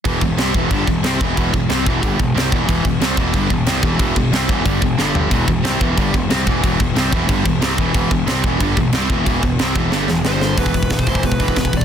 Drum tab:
CC |x---x---x---x---|x---x---x---x---|x---x---x---x---|x---x---x-------|
HH |----------------|----------------|----------------|----------------|
SD |----o-------o---|----o-------o---|----o-------o---|----o-------o---|
FT |----------------|----------------|----------------|--------------o-|
BD |o-o---o-o-o---o-|o-o---o-o-o---o-|o-o---o-o-o---o-|o-o---o-o-o-----|

CC |x---x---x---x---|x---x---x---x---|x---x---x---x---|x---x-----------|
HH |----------------|----------------|----------------|----------------|
SD |----o-------o---|----o-------o---|----o-------o---|----o---o-o-o-o-|
FT |----------------|----------------|----------------|----------------|
BD |o-o---o-o-o---o-|o-o---o-o-o---o-|o-o---o-o-o---o-|o-o---o---------|

CC |----------------|
HH |o-o-o-o-o-o-o-o-|
SD |----o-------o---|
FT |----------------|
BD |oooooooooooooooo|